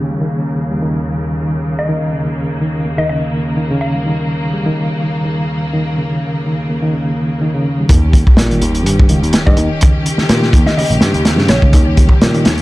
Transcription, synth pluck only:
1.79 2.26 D#5 medium
2.98 3.05 D#5 medium
3.09 3.18 D#5 medium
3.81 4.29 F5 medium
9.46 9.94 D#5 medium
10.67 10.73 D#5 medium
10.77 10.86 D#5 medium
11.49 11.97 C#5 medium

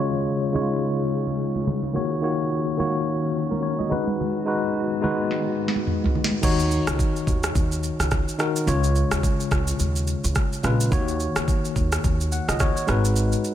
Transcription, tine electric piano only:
0.00 0.53 C#3 medium
0.00 0.54 G#3 medium
0.00 0.61 F4 medium
0.00 0.56 C#5 medium
0.53 1.57 C#3 medium
0.53 1.58 G#3 medium
0.53 0.62 D#4 medium
0.53 1.59 C#5 medium
0.61 1.61 F4 medium
1.93 2.20 D#3 medium
1.93 2.20 A#3 medium
1.93 2.21 F#4 medium
1.93 2.21 C#5 medium
2.22 2.74 D#3 medium
2.22 2.74 A#3 medium
2.22 2.75 F#4 medium
2.22 2.75 C#5 medium
2.77 3.82 D#3 medium
2.77 3.82 A#3 medium
2.77 3.82 F#4 medium
2.77 3.35 C#5 medium
3.51 3.62 A#4 medium
3.63 3.78 C#5 medium
3.79 4.06 D#5 medium
3.89 4.42 G#3 medium
3.89 4.42 D#4 medium
3.89 4.43 F#4 medium
3.89 4.43 B4 loud
4.45 4.98 G#3 medium
4.45 4.98 D#4 medium
4.45 4.99 F#4 medium
4.45 4.99 B4 medium
5.01 6.06 G#3 medium
5.01 6.06 D#4 medium
5.01 6.07 F#4 medium
5.01 6.07 B4 medium
6.42 7.46 D#3 medium
6.42 7.46 D#4 medium
6.42 7.47 F#4 medium
6.42 7.47 C#5 loud
8.38 8.65 D#3 medium
8.38 8.65 D#4 medium
8.38 8.65 F#4 medium
8.38 8.66 A#4 loud
8.66 9.70 C#3 medium
8.66 9.71 G#3 medium
8.66 9.71 F4 medium
8.66 9.72 C#5 medium
10.63 10.89 C#3 medium
10.63 10.89 G#3 medium
10.63 10.90 F4 medium
10.63 10.90 B4 medium
10.91 11.95 D#3 medium
10.91 11.95 A#3 medium
10.91 11.96 F#4 medium
10.91 11.96 C#5 loud
12.32 12.48 F#5 medium
12.48 12.59 D#5 medium
12.60 12.75 C#5 medium
12.76 13.03 C#5 medium
12.87 13.54 G#3 medium
12.87 13.54 D#4 medium
12.87 13.54 F#4 medium
12.87 13.54 B4 loud

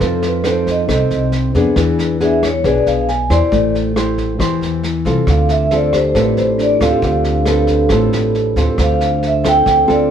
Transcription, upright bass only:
0.01 0.85 F2 loud
0.89 1.09 C2 medium
1.11 1.52 C2 medium
1.55 1.65 F2 medium
1.76 2.60 E2 loud
2.64 2.85 B1 medium
2.87 3.27 B1 medium
3.30 3.40 E2 medium
3.52 4.36 A1 loud
4.40 4.60 E2 medium
4.61 5.02 E2 medium
5.05 5.16 C2 medium
5.27 6.11 D2 loud
6.15 6.36 A1 medium
6.37 6.78 A1 medium
6.80 6.91 D2 medium
7.02 7.87 D2 loud
7.90 8.11 A1 medium
8.14 8.54 A1 medium
8.56 8.67 D2 medium
8.78 9.62 D2 loud
9.66 9.87 D2 medium
9.89 10.11 D2 medium

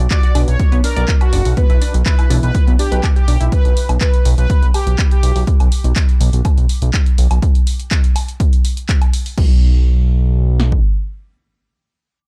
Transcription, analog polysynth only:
0.11 0.39 D5 loud
0.48 0.76 C#5 loud
0.84 1.12 A#4 loud
1.21 1.49 F#4 medium
1.57 1.95 B4 loud
2.06 2.34 B4 loud
2.43 2.71 B4 loud
2.79 3.08 G4 loud
3.16 3.44 G4 medium
3.52 3.90 B4 loud
4.01 4.29 B4 loud
4.38 4.66 B4 loud
4.74 5.03 G4 loud
5.11 5.40 G4 loud

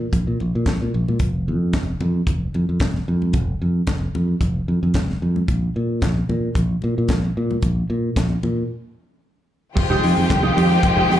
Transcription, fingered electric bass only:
0.13 0.23 A#1 medium
0.27 0.36 A#2 medium
0.41 0.51 A#1 medium
0.55 0.64 A#2 medium
0.66 0.77 A#1 medium
0.82 0.90 A#2 medium
0.94 1.04 A#1 medium
1.09 1.17 A#2 medium
1.20 1.50 F1 medium
1.48 1.75 F2 medium
1.74 1.93 F1 medium
2.01 2.20 F2 medium
2.27 2.47 F1 medium
2.55 2.65 F2 medium
2.69 2.78 F2 medium
2.80 3.00 F1 medium
3.08 3.36 F2 medium
3.34 3.54 F1 loud
3.62 3.81 F2 loud
3.88 4.07 F1 loud
4.15 4.34 F2 medium
4.41 4.60 F1 medium
4.68 4.78 F2 medium
4.83 4.92 F2 medium
4.95 5.14 F1 medium
5.22 5.41 F2 medium
5.49 5.68 A#1 medium
5.76 6.04 A#2 medium
6.02 6.21 A#1 medium
6.29 6.48 A#2 medium
6.56 6.75 A#1 medium
6.84 6.93 A#2 medium
6.98 7.11 A#2 medium
7.10 7.29 A#1 loud
7.37 7.56 A#2 loud
7.63 7.82 A#1 loud
7.90 8.09 A#2 loud
8.17 8.36 A#1 loud
8.44 8.63 A#2 medium
9.77 9.96 F1 loud
10.04 10.14 F2 loud
10.18 10.27 F2 loud
10.31 10.50 C2 loud
10.57 10.76 F2 loud
10.84 11.03 F1 loud
11.11 11.20 F2 loud

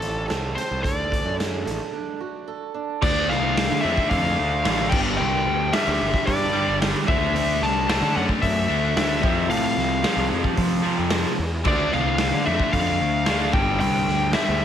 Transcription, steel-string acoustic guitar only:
0.00 0.83 G3 medium
0.00 0.54 C4 medium
0.00 0.83 F4 medium
0.28 2.47 A4 medium
0.56 0.83 C4 medium
0.83 2.20 D3 medium
1.11 1.64 A3 medium
1.38 1.92 D4 medium
1.65 3.02 A3 medium
1.93 2.73 D4 medium
2.20 3.02 F#4 medium
2.48 3.02 A4 medium
2.74 3.02 D4 medium

